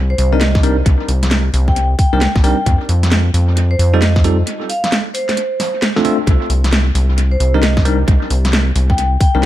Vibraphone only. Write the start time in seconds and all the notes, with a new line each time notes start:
0.10 C5
0.18 C5
0.32 D#5
1.68 G5
1.99 G5
2.13 G5
2.44 G5
3.71 C5
3.79 C5
3.93 D#5
4.02 D#5
4.69 F5
5.14 C5
7.31 C5
7.40 C5
7.54 D#5
8.90 G5
9.20 G5
9.35 G5